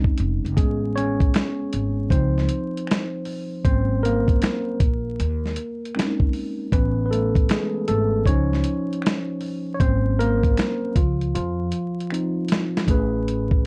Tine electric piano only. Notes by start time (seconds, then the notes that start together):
Already playing: G#3 C4 C#4 D#4
0.57 G#3 B3 C#4 G#4
0.96 C#4 C#5
2.11 F3 C4 D#4 C5
3.65 F#3 A#3 C4 C#4 C5
4.03 A#3 A#4
5.96 G#3 C4 C#4 D#4
6.72 E3 B3 C#4 B4
7.05 B4
7.11 A3 A4
7.50 G#3 G#4
7.88 A3 A4
8.26 F3 C#4 D#4 C5 C#5
9.74 C#5
9.80 F#3 A#3 C4 C#4 C5
10.19 A#3 A#4
10.96 F3 F4
11.35 F3 F4
12.12 F3 C4 D#4
12.87 A2 A3 C#4 G#4
12.91 B4